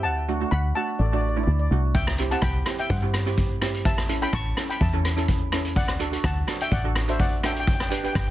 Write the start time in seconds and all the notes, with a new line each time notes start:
0.03 D2 F#5 A5
0.28 A3 D4 F#4
0.41 A3 D4 F#4
0.51 D2 F#5 B5
0.75 A3 D4 F#4 F#5 A5
0.99 A1 A4 D5
1.06 D5
1.13 A3 D4 F#4 D5
1.21 D5
1.29 D5
1.36 A3 D4 E4 D5
1.43 D2 D5
1.51 D5
1.59 D5
1.71 C2 A3 D4 F#4
1.94 C2 E5 G5, kick, closed hi-hat
2.07 cross-stick
2.18 C4 E4 G4, closed hi-hat
2.31 C4 E4 G4 F#5 A5, closed hi-hat
2.42 C2 G5 B5, kick, cross-stick, closed hi-hat
2.66 C4 E4 G4, cross-stick, closed hi-hat
2.78 E5 G5, closed hi-hat
2.90 G2 C5 F#5, kick, closed hi-hat
3.02 C4 E4 G4
3.14 cross-stick, closed hi-hat
3.26 C4 E4 G4, closed hi-hat
3.37 kick, closed hi-hat
3.62 C4 E4 G4, cross-stick, closed hi-hat
3.74 closed hi-hat
3.85 A1 E5 A5, kick, closed hi-hat
3.98 cross-stick
4.09 C#4 E4 A4, closed hi-hat
4.22 C#4 E4 A4 G5 B5, closed hi-hat
4.33 A1 A5 C#6, kick, cross-stick, closed hi-hat
4.57 C#4 E4 A4, cross-stick, closed hi-hat
4.69 G5 B5, closed hi-hat
4.81 E2 E5 A5, kick, closed hi-hat
4.93 C#4 E4 A4
5.05 cross-stick, closed hi-hat
5.17 C#4 E4 A4, closed hi-hat
5.28 kick, closed hi-hat
5.52 C#4 E4 A4, cross-stick, closed hi-hat
5.65 closed hi-hat
5.76 D2 D5 F#5, kick, closed hi-hat
5.88 cross-stick
5.99 D4 F#4 A4, closed hi-hat
6.12 D4 F#4 A4, closed hi-hat
6.24 D2 F#5 A5, kick, cross-stick, closed hi-hat
6.47 D4 F#4 A4, cross-stick, closed hi-hat
6.61 E5 G5, closed hi-hat
6.71 A1 D5 F#5, kick, closed hi-hat
6.84 D4 F#4 A4
6.96 cross-stick, closed hi-hat
7.08 D4 F#4 A4 C5 E5, closed hi-hat
7.20 D5 F#5, kick, closed hi-hat
7.43 D4 F#4 A4 E5 G5, cross-stick, closed hi-hat
7.53 G5, closed hi-hat
7.60 G5
7.67 G1 G5, kick, closed hi-hat
7.75 G5
7.80 G5, cross-stick
7.89 D4 G4 B4 G5, closed hi-hat
7.98 G5
8.03 D4 G4 B4 G5, closed hi-hat
8.13 G1 G5, kick, cross-stick, closed hi-hat
8.20 G5